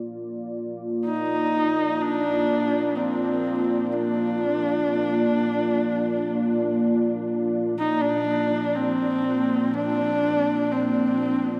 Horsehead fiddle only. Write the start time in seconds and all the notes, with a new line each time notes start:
1.05 D#4
2.01 D4
2.95 C4
3.93 D4
7.79 D#4
8.01 D4
8.75 C4
9.74 D4
10.71 C4